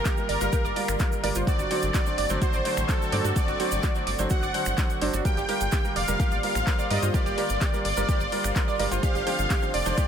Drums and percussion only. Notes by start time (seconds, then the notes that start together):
0.05 kick, clap, closed hi-hat, shaker
0.17 shaker
0.29 open hi-hat
0.41 closed hi-hat, shaker
0.53 kick, closed hi-hat, shaker
0.65 shaker
0.76 open hi-hat
0.88 finger snap, closed hi-hat, shaker
1.00 kick, clap, closed hi-hat, shaker
1.12 shaker
1.24 open hi-hat
1.35 closed hi-hat, shaker
1.47 kick, closed hi-hat, shaker
1.59 closed hi-hat, shaker
1.71 open hi-hat
1.82 closed hi-hat, shaker
1.94 kick, clap, closed hi-hat, shaker
2.06 shaker
2.18 open hi-hat
2.29 closed hi-hat, shaker
2.42 kick, closed hi-hat, shaker
2.53 shaker
2.65 open hi-hat
2.77 finger snap, closed hi-hat, shaker
2.89 kick, clap, closed hi-hat, shaker
3.02 shaker
3.12 open hi-hat
3.24 closed hi-hat, shaker
3.36 kick, closed hi-hat, shaker
3.48 closed hi-hat, shaker
3.60 open hi-hat
3.72 closed hi-hat, shaker
3.83 kick, clap, closed hi-hat, shaker
3.95 shaker
4.07 open hi-hat
4.19 closed hi-hat, shaker
4.30 kick, closed hi-hat, shaker
4.43 shaker
4.54 open hi-hat
4.65 finger snap, closed hi-hat, shaker
4.78 kick, clap, closed hi-hat, shaker
4.90 closed hi-hat, shaker
5.01 open hi-hat
5.14 closed hi-hat, shaker
5.25 kick, closed hi-hat, shaker
5.37 closed hi-hat, shaker
5.49 open hi-hat
5.61 closed hi-hat, shaker
5.72 kick, clap, closed hi-hat, shaker
5.85 shaker
5.96 open hi-hat
6.08 closed hi-hat, shaker
6.20 kick, closed hi-hat, shaker
6.31 shaker
6.43 open hi-hat
6.55 finger snap, closed hi-hat, shaker
6.67 kick, clap, closed hi-hat, shaker
6.79 shaker
6.91 open hi-hat
7.03 closed hi-hat, shaker
7.14 kick, closed hi-hat, shaker
7.26 closed hi-hat, shaker
7.38 open hi-hat
7.49 closed hi-hat, shaker
7.61 kick, clap, closed hi-hat, shaker
7.74 shaker
7.85 open hi-hat
7.97 closed hi-hat, shaker
8.09 kick, closed hi-hat, shaker
8.20 shaker
8.32 open hi-hat
8.44 finger snap, closed hi-hat, shaker
8.56 kick, clap, closed hi-hat, shaker
8.68 shaker
8.79 open hi-hat
8.92 closed hi-hat, shaker
9.03 kick, closed hi-hat, shaker
9.15 closed hi-hat, shaker
9.27 open hi-hat
9.39 closed hi-hat, shaker
9.50 kick, clap, closed hi-hat, shaker
9.63 shaker
9.74 open hi-hat
9.86 closed hi-hat, shaker
9.98 kick, closed hi-hat, shaker